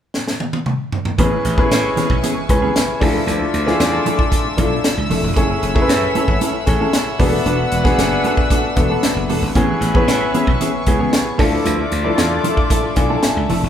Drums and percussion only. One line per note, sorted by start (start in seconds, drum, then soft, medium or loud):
0.14 snare medium
0.28 snare medium
0.40 high tom medium
0.53 high tom medium
0.66 mid tom medium
0.92 floor tom medium
1.05 floor tom loud
1.18 kick medium
1.18 closed hi-hat medium
1.45 snare soft
1.45 closed hi-hat medium
1.58 kick medium
1.71 snare loud
1.71 closed hi-hat medium
1.97 snare soft
1.97 closed hi-hat medium
2.10 kick medium
2.23 closed hi-hat loud
2.49 kick medium
2.49 closed hi-hat medium
2.76 snare loud
2.76 closed hi-hat loud
3.01 kick loud
3.01 open hi-hat medium
3.28 closed hi-hat medium
3.54 closed hi-hat medium
3.67 snare soft
3.80 snare loud
3.80 closed hi-hat medium
4.06 closed hi-hat medium
4.19 kick medium
4.32 kick medium
4.32 closed hi-hat loud
4.58 kick medium
4.58 closed hi-hat medium
4.84 snare loud
4.84 closed hi-hat loud
5.10 open hi-hat medium
5.36 kick medium
5.36 closed hi-hat medium
5.63 closed hi-hat medium
5.76 kick medium
5.89 snare loud
5.89 closed hi-hat medium
6.15 closed hi-hat medium
6.28 kick medium
6.41 closed hi-hat loud
6.67 kick medium
6.67 closed hi-hat medium
6.93 snare loud
6.93 closed hi-hat medium
7.20 kick loud
7.20 open hi-hat medium
7.46 closed hi-hat medium
7.71 closed hi-hat medium
7.85 kick loud
7.85 snare soft
7.98 snare loud
7.98 closed hi-hat medium
8.24 closed hi-hat medium
8.37 kick medium
8.50 kick medium
8.50 closed hi-hat loud
8.76 kick medium
8.76 closed hi-hat medium
9.03 snare loud
9.03 closed hi-hat loud
9.29 open hi-hat medium
9.55 kick medium
9.55 closed hi-hat medium
9.82 snare soft
9.82 closed hi-hat medium
9.95 kick medium
10.08 snare loud
10.08 closed hi-hat medium
10.34 closed hi-hat medium
10.47 kick medium
10.61 closed hi-hat loud
10.86 kick medium
10.86 closed hi-hat medium
11.13 snare loud
11.13 closed hi-hat loud
11.39 kick loud
11.39 open hi-hat medium
11.65 closed hi-hat medium
11.91 closed hi-hat medium
12.18 snare loud
12.18 closed hi-hat medium
12.44 closed hi-hat medium
12.57 kick medium
12.70 kick medium
12.70 closed hi-hat loud
12.96 kick medium
12.96 closed hi-hat medium
13.23 snare loud
13.23 closed hi-hat medium
13.49 open hi-hat medium